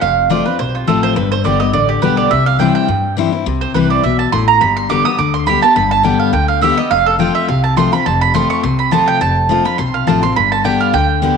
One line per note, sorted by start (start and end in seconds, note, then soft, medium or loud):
0.01 0.39 F1 medium
0.01 0.57 F2 medium
0.01 0.28 F5 medium
0.30 0.45 F3 medium
0.30 0.45 A3 medium
0.30 0.46 C4 medium
0.30 0.44 F4 medium
0.30 0.45 D5 medium
0.45 0.60 C4 soft
0.45 0.58 F4 medium
0.45 0.59 B4 medium
0.59 0.84 B1 medium
0.59 1.14 C3 medium
0.59 0.74 C5 medium
0.75 0.88 F4 medium
0.87 1.12 A1 medium
0.87 1.15 F3 medium
0.87 1.15 A3 medium
0.87 1.16 C4 medium
0.87 1.16 F4 medium
0.87 1.03 A4 medium
1.03 1.16 C5 loud
1.16 1.35 G1 loud
1.16 1.71 G2 medium
1.16 1.31 B4 medium
1.32 1.44 C5 loud
1.44 1.70 G1 medium
1.44 1.60 D3 medium
1.44 1.60 G3 medium
1.44 1.60 B3 medium
1.44 1.58 G4 loud
1.44 1.59 D5 medium
1.60 1.74 B3 medium
1.60 1.73 G4 medium
1.60 1.73 D#5 loud
1.73 1.98 A1 medium
1.73 2.00 D3 medium
1.73 1.89 D5 medium
1.89 2.02 G4 medium
2.02 2.27 B1 medium
2.02 2.30 D3 medium
2.02 2.30 G3 medium
2.02 2.30 B3 medium
2.02 2.31 G4 medium
2.02 2.17 B4 medium
2.17 2.31 D5 loud
2.31 2.68 C2 loud
2.31 2.86 C3 medium
2.31 2.46 E5 medium
2.46 2.59 F5 loud
2.59 2.87 E3 medium
2.59 2.87 G3 medium
2.59 2.88 C4 medium
2.59 2.88 E4 medium
2.59 2.74 G5 medium
2.75 3.14 G5 loud
2.88 3.43 G2 medium
2.88 3.26 G2 medium
3.17 3.32 E3 medium
3.17 3.32 G3 loud
3.17 3.33 C4 loud
3.17 3.31 E4 medium
3.32 3.47 C4 soft
3.32 3.45 E4 medium
3.46 3.65 C2 loud
3.46 4.01 C3 medium
3.61 3.74 C5 loud
3.74 4.00 C2 medium
3.74 4.02 E3 medium
3.74 4.03 G3 medium
3.74 4.03 C4 medium
3.74 4.03 E4 medium
3.74 3.90 B4 medium
3.90 4.03 D5 medium
4.03 4.28 B1 medium
4.03 4.31 B2 medium
4.03 4.19 E5 medium
4.19 4.32 A5 medium
4.32 4.57 A1 medium
4.32 4.60 A2 medium
4.32 4.47 C6 loud
4.48 4.60 A#5 loud
4.61 4.98 G1 loud
4.61 5.16 G2 loud
4.61 4.76 B5 loud
4.77 4.89 C6 loud
4.89 5.04 D3 medium
4.89 5.05 G3 medium
4.89 5.05 B3 medium
4.89 5.03 G4 medium
4.89 5.05 D6 loud
5.05 5.19 B3 soft
5.05 5.18 G4 medium
5.05 5.18 D#6 loud
5.18 5.55 D2 medium
5.18 5.45 D3 medium
5.18 5.33 D6 loud
5.34 5.47 C6 medium
5.46 5.62 D3 medium
5.46 5.62 G3 medium
5.46 5.62 B3 medium
5.46 5.60 G4 loud
5.46 5.62 B5 loud
5.62 5.76 B3 soft
5.62 5.75 G4 medium
5.62 5.76 A5 loud
5.76 6.13 G1 loud
5.76 6.31 G2 medium
5.76 5.91 B5 loud
5.91 6.04 A5 loud
6.03 6.32 D3 medium
6.03 6.32 G3 medium
6.03 6.33 B3 loud
6.03 6.33 G4 medium
6.03 6.19 G5 medium
6.20 6.33 F5 medium
6.33 6.70 D2 loud
6.33 6.60 D3 medium
6.33 6.48 G5 medium
6.48 6.62 F5 medium
6.61 6.77 D3 medium
6.61 6.77 G3 medium
6.61 6.78 B3 loud
6.61 6.76 G4 loud
6.61 6.77 E5 medium
6.77 6.91 B3 medium
6.77 6.90 G4 medium
6.77 6.91 D#5 loud
6.91 7.28 F1 medium
6.91 7.46 F2 medium
6.91 7.06 F5 loud
7.06 7.14 A4 loud
7.19 7.47 F3 medium
7.19 7.47 A3 medium
7.19 7.48 C4 medium
7.19 7.48 F4 loud
7.19 7.34 G5 medium
7.35 7.48 E5 loud
7.48 7.86 C2 medium
7.48 8.04 C3 medium
7.48 7.63 F5 medium
7.64 7.77 A5 medium
7.77 7.92 F3 medium
7.77 7.92 A3 loud
7.77 7.93 C4 loud
7.77 7.91 F4 loud
7.77 7.92 C6 loud
7.92 8.06 C4 soft
7.92 8.05 F4 medium
7.92 8.06 B5 loud
8.06 8.43 F1 loud
8.06 8.61 F2 medium
8.06 8.21 A5 medium
8.21 8.34 B5 loud
8.34 8.62 F3 medium
8.34 8.62 A3 loud
8.34 8.63 C4 loud
8.34 8.63 F4 medium
8.34 8.50 C6 loud
8.50 8.63 C#6 loud
8.63 9.01 C2 medium
8.63 9.19 C3 medium
8.63 8.78 C6 medium
8.79 8.92 B5 medium
8.91 9.19 F3 medium
8.91 9.20 A3 loud
8.91 9.20 C4 loud
8.91 9.21 F4 loud
8.91 9.07 A5 medium
9.08 9.21 G5 loud
9.21 9.58 F1 loud
9.21 9.76 F2 loud
9.21 9.62 A5 loud
9.49 9.64 F3 medium
9.49 9.65 A3 medium
9.49 9.65 C4 medium
9.49 9.63 F4 medium
9.65 9.79 C4 soft
9.65 9.78 F4 medium
9.65 9.78 B5 loud
9.78 10.03 B1 medium
9.78 10.34 C3 medium
9.78 9.94 C6 loud
9.94 10.07 F5 medium
10.07 10.32 A1 medium
10.07 10.22 F3 medium
10.07 10.23 A3 medium
10.07 10.23 C4 loud
10.07 10.21 F4 loud
10.07 10.22 A5 medium
10.22 10.37 C4 medium
10.22 10.35 F4 medium
10.22 10.36 C6 loud
10.36 10.73 G1 loud
10.36 10.91 G2 medium
10.36 10.51 B5 medium
10.52 10.64 A5 loud
10.64 10.92 D3 medium
10.64 10.93 G3 medium
10.64 10.93 B3 medium
10.64 10.94 G4 medium
10.64 10.80 G5 medium
10.81 10.94 F5 medium
10.93 11.31 D2 medium
10.93 11.21 D3 medium
10.93 11.35 G5 loud
11.22 11.37 D3 medium
11.22 11.37 G3 medium
11.22 11.37 B3 loud
11.22 11.37 G4 loud